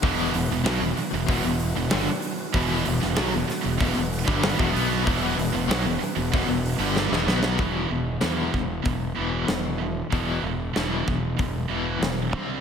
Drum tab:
HH |o-o-o-o-o-o-o-o-|o-o-o-o-o-o-o-o-|o-o-o-o-o-o-----|o---o---o---o---|
SD |----o-------o---|---oo-o-----o---|----o-------oooo|----o-------o---|
BD |o-------o-------|o-------o--o-o--|o-------o-------|o-----o-o-------|

HH |o---o---o---o---|
SD |----o-------o---|
BD |o-----o-o-------|